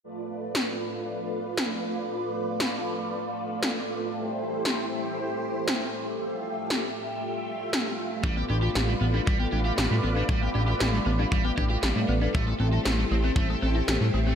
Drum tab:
SD |--o---o-|--o---o-|--o---o-|--o---o-|
BD |--------|--------|--------|--------|

SD |--o---o-|--o---o-|--o---o-|
BD |o---o---|o---oo--|o---o---|